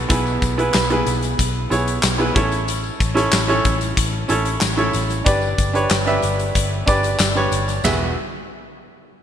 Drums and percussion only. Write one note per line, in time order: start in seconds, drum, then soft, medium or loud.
0.10 kick loud
0.10 closed hi-hat medium
0.10 tambourine soft
0.26 tambourine soft
0.42 kick medium
0.42 closed hi-hat medium
0.42 tambourine soft
0.59 closed hi-hat soft
0.74 snare loud
0.74 clap medium
0.74 closed hi-hat medium
0.74 tambourine medium
0.90 closed hi-hat soft
1.07 closed hi-hat medium
1.07 tambourine soft
1.23 closed hi-hat soft
1.23 tambourine soft
1.39 kick medium
1.39 closed hi-hat medium
1.39 tambourine soft
1.71 closed hi-hat medium
1.71 tambourine soft
1.88 closed hi-hat medium
1.88 tambourine soft
2.03 snare loud
2.03 clap medium
2.03 closed hi-hat medium
2.03 tambourine medium
2.36 kick loud
2.36 closed hi-hat medium
2.36 tambourine soft
2.52 closed hi-hat soft
2.52 tambourine soft
2.68 closed hi-hat medium
2.68 tambourine soft
2.84 tambourine soft
3.00 kick medium
3.00 closed hi-hat medium
3.00 tambourine soft
3.17 snare soft
3.17 closed hi-hat soft
3.32 snare loud
3.32 clap medium
3.32 closed hi-hat medium
3.32 tambourine medium
3.49 closed hi-hat soft
3.65 kick medium
3.65 closed hi-hat medium
3.65 tambourine soft
3.81 closed hi-hat soft
3.81 tambourine soft
3.97 kick medium
3.97 closed hi-hat loud
3.97 tambourine soft
4.29 closed hi-hat medium
4.29 tambourine soft
4.45 closed hi-hat medium
4.45 tambourine soft
4.61 snare loud
4.61 clap medium
4.61 closed hi-hat medium
4.61 tambourine medium
4.78 closed hi-hat soft
4.93 closed hi-hat medium
4.93 tambourine soft
5.10 closed hi-hat soft
5.10 tambourine soft
5.26 kick loud
5.26 closed hi-hat loud
5.26 tambourine soft
5.42 tambourine soft
5.58 kick medium
5.58 closed hi-hat medium
5.58 tambourine soft
5.75 closed hi-hat soft
5.90 snare loud
5.90 clap medium
5.90 closed hi-hat medium
5.90 tambourine medium
6.07 closed hi-hat soft
6.22 closed hi-hat medium
6.22 tambourine soft
6.40 closed hi-hat soft
6.55 kick medium
6.55 closed hi-hat loud
6.55 tambourine soft
6.87 kick medium
6.87 closed hi-hat medium
6.87 tambourine soft
7.03 closed hi-hat medium
7.03 tambourine soft
7.19 snare loud
7.19 clap medium
7.19 closed hi-hat medium
7.19 tambourine loud
7.52 closed hi-hat medium
7.52 tambourine soft
7.68 closed hi-hat soft
7.68 tambourine soft
7.84 snare medium
7.84 floor tom medium
7.84 ride bell medium
7.84 tambourine medium